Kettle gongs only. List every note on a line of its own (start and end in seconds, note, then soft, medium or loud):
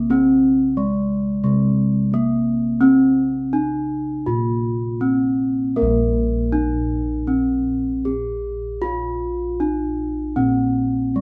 0.00 0.73 C3 medium
0.10 0.76 C4 medium
0.77 0.85 C4 soft
1.44 3.49 C3 medium
2.12 2.20 C4 soft
2.82 3.52 C4 medium
3.53 3.61 C4 soft
4.27 6.50 A#2 medium
5.00 5.08 C4 medium
5.77 8.03 A#4 medium
5.82 10.37 A#1 loud
6.53 6.61 C4 soft
8.07 8.15 C4 soft
8.84 11.11 F4 medium
9.60 9.68 C4 soft
10.37 11.21 A#2 medium
11.14 11.21 C4 soft